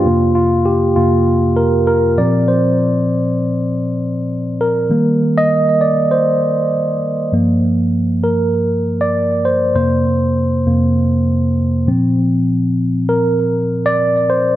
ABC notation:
X:1
M:4/4
L:1/16
Q:"Swing 16ths" 1/4=99
K:Bb
V:1 name="Tine electric piano"
F2 F2 G2 F4 B2 B2 d2 | c4 z8 z2 B2- | B3 e3 d2 c4 z4 | z6 B4- B d3 c2 |
c4 z12 | z6 B4- B d3 c2 |]
V:2 name="Tine electric piano" clef=bass
[F,,C,B,]6 [F,,C,B,]2 z6 [B,,F,C]2 | z16 | [E,G,B,]6 z8 z2 | [G,,F,B,]16 |
[F,,C,B,]2 z4 [F,,C,B,]2 z6 [B,,F,C]2 | z16 |]